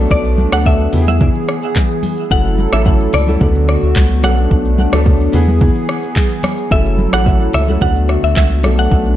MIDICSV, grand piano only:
0, 0, Header, 1, 2, 480
1, 0, Start_track
1, 0, Tempo, 550459
1, 93, Time_signature, 4, 2, 24, 8
1, 7992, End_track
2, 0, Start_track
2, 0, Title_t, "Grand piano"
2, 0, Program_c, 0, 0
2, 0, Note_on_c, 0, 54, 99
2, 0, Note_on_c, 0, 57, 84
2, 0, Note_on_c, 0, 59, 91
2, 0, Note_on_c, 0, 62, 88
2, 0, Note_on_c, 0, 69, 106
2, 3, Control_c, 0, 64, 127
2, 418, Note_off_c, 0, 54, 0
2, 420, Note_off_c, 0, 57, 0
2, 423, Note_off_c, 0, 59, 0
2, 426, Note_off_c, 0, 62, 0
2, 428, Note_off_c, 0, 69, 0
2, 448, Note_on_c, 0, 54, 81
2, 454, Note_on_c, 0, 57, 74
2, 459, Note_on_c, 0, 59, 76
2, 465, Note_on_c, 0, 62, 75
2, 470, Note_on_c, 0, 69, 89
2, 790, Note_off_c, 0, 59, 0
2, 803, Note_on_c, 0, 59, 83
2, 809, Note_off_c, 0, 54, 0
2, 811, Note_off_c, 0, 57, 0
2, 814, Note_on_c, 0, 64, 77
2, 817, Note_off_c, 0, 62, 0
2, 819, Note_off_c, 0, 69, 0
2, 825, Note_on_c, 0, 67, 73
2, 826, Control_c, 0, 64, 0
2, 878, Note_off_c, 0, 67, 0
2, 881, Note_on_c, 0, 68, 90
2, 975, Control_c, 0, 64, 127
2, 1716, Note_off_c, 0, 59, 0
2, 1721, Note_off_c, 0, 64, 0
2, 1755, Note_off_c, 0, 68, 0
2, 2003, Note_on_c, 0, 54, 76
2, 2008, Note_on_c, 0, 57, 71
2, 2014, Note_on_c, 0, 61, 73
2, 2019, Note_on_c, 0, 64, 73
2, 2024, Note_on_c, 0, 69, 86
2, 2025, Control_c, 0, 64, 0
2, 2166, Control_c, 0, 64, 127
2, 2352, Note_off_c, 0, 54, 0
2, 2354, Note_off_c, 0, 57, 0
2, 2357, Note_off_c, 0, 61, 0
2, 2360, Note_off_c, 0, 64, 0
2, 2363, Note_off_c, 0, 69, 0
2, 2368, Note_on_c, 0, 54, 83
2, 2373, Note_on_c, 0, 57, 75
2, 2379, Note_on_c, 0, 61, 75
2, 2384, Note_on_c, 0, 64, 76
2, 2389, Note_on_c, 0, 69, 93
2, 2825, Note_off_c, 0, 54, 0
2, 2827, Note_off_c, 0, 57, 0
2, 2830, Note_off_c, 0, 61, 0
2, 2833, Note_off_c, 0, 64, 0
2, 2835, Note_off_c, 0, 69, 0
2, 2848, Note_on_c, 0, 54, 81
2, 2853, Note_on_c, 0, 57, 70
2, 2859, Note_on_c, 0, 61, 70
2, 2864, Note_on_c, 0, 64, 75
2, 2870, Note_on_c, 0, 69, 85
2, 2950, Note_off_c, 0, 54, 0
2, 2955, Note_off_c, 0, 57, 0
2, 2963, Note_on_c, 0, 54, 82
2, 2968, Note_on_c, 0, 57, 75
2, 2972, Note_off_c, 0, 69, 0
2, 2973, Note_on_c, 0, 59, 76
2, 2974, Note_off_c, 0, 61, 0
2, 2976, Note_off_c, 0, 64, 0
2, 2980, Note_on_c, 0, 62, 73
2, 2985, Control_c, 0, 64, 0
2, 2985, Note_on_c, 0, 69, 85
2, 3113, Control_c, 0, 64, 127
2, 3649, Note_off_c, 0, 54, 0
2, 3652, Note_off_c, 0, 57, 0
2, 3654, Note_off_c, 0, 59, 0
2, 3657, Note_off_c, 0, 62, 0
2, 3660, Note_off_c, 0, 69, 0
2, 3683, Note_on_c, 0, 54, 84
2, 3688, Note_on_c, 0, 57, 73
2, 3694, Note_on_c, 0, 59, 73
2, 3700, Note_on_c, 0, 61, 60
2, 3705, Control_c, 0, 64, 0
2, 3705, Note_on_c, 0, 69, 88
2, 3756, Note_off_c, 0, 61, 0
2, 3756, Note_on_c, 0, 62, 72
2, 3842, Control_c, 0, 64, 127
2, 4258, Note_off_c, 0, 54, 0
2, 4260, Note_off_c, 0, 57, 0
2, 4263, Note_off_c, 0, 59, 0
2, 4268, Note_off_c, 0, 69, 0
2, 4288, Note_on_c, 0, 54, 94
2, 4292, Note_off_c, 0, 62, 0
2, 4293, Note_on_c, 0, 57, 89
2, 4299, Note_on_c, 0, 59, 89
2, 4305, Note_on_c, 0, 62, 88
2, 4310, Note_on_c, 0, 69, 104
2, 4630, Note_off_c, 0, 59, 0
2, 4643, Note_on_c, 0, 59, 101
2, 4648, Note_off_c, 0, 54, 0
2, 4651, Note_off_c, 0, 57, 0
2, 4654, Note_on_c, 0, 64, 93
2, 4657, Note_off_c, 0, 62, 0
2, 4659, Note_off_c, 0, 69, 0
2, 4664, Note_on_c, 0, 68, 110
2, 4667, Control_c, 0, 64, 0
2, 4798, Control_c, 0, 64, 127
2, 5556, Note_off_c, 0, 59, 0
2, 5561, Note_off_c, 0, 64, 0
2, 5566, Note_off_c, 0, 68, 0
2, 5843, Note_on_c, 0, 54, 79
2, 5849, Note_on_c, 0, 57, 74
2, 5854, Note_on_c, 0, 61, 73
2, 5859, Note_on_c, 0, 64, 74
2, 5865, Note_on_c, 0, 69, 87
2, 5866, Control_c, 0, 64, 0
2, 6019, Control_c, 0, 64, 127
2, 6192, Note_off_c, 0, 54, 0
2, 6195, Note_off_c, 0, 57, 0
2, 6197, Note_off_c, 0, 61, 0
2, 6200, Note_off_c, 0, 64, 0
2, 6203, Note_off_c, 0, 69, 0
2, 6207, Note_on_c, 0, 54, 81
2, 6212, Note_on_c, 0, 57, 74
2, 6218, Note_on_c, 0, 61, 75
2, 6223, Note_on_c, 0, 64, 76
2, 6229, Note_on_c, 0, 69, 90
2, 6664, Note_off_c, 0, 54, 0
2, 6667, Note_off_c, 0, 57, 0
2, 6670, Note_off_c, 0, 61, 0
2, 6672, Note_off_c, 0, 64, 0
2, 6675, Note_off_c, 0, 69, 0
2, 6688, Note_on_c, 0, 54, 77
2, 6693, Note_on_c, 0, 57, 72
2, 6698, Note_on_c, 0, 61, 72
2, 6704, Note_on_c, 0, 64, 70
2, 6710, Note_on_c, 0, 69, 86
2, 6791, Note_off_c, 0, 54, 0
2, 6796, Note_off_c, 0, 57, 0
2, 6804, Note_on_c, 0, 54, 81
2, 6809, Note_on_c, 0, 57, 72
2, 6812, Note_off_c, 0, 69, 0
2, 6813, Note_off_c, 0, 61, 0
2, 6814, Note_on_c, 0, 59, 73
2, 6816, Note_off_c, 0, 64, 0
2, 6820, Note_on_c, 0, 62, 74
2, 6825, Control_c, 0, 64, 0
2, 6826, Note_on_c, 0, 69, 88
2, 6994, Control_c, 0, 64, 127
2, 7489, Note_off_c, 0, 54, 0
2, 7492, Note_off_c, 0, 57, 0
2, 7495, Note_off_c, 0, 59, 0
2, 7497, Note_off_c, 0, 62, 0
2, 7500, Note_off_c, 0, 69, 0
2, 7524, Note_on_c, 0, 54, 79
2, 7529, Note_on_c, 0, 57, 74
2, 7534, Note_on_c, 0, 59, 71
2, 7540, Note_on_c, 0, 62, 70
2, 7545, Control_c, 0, 64, 0
2, 7545, Note_on_c, 0, 69, 86
2, 7684, Control_c, 0, 64, 127
2, 7992, Note_off_c, 0, 54, 0
2, 7992, Note_off_c, 0, 57, 0
2, 7992, Note_off_c, 0, 59, 0
2, 7992, Note_off_c, 0, 62, 0
2, 7992, Note_off_c, 0, 69, 0
2, 7992, End_track
0, 0, End_of_file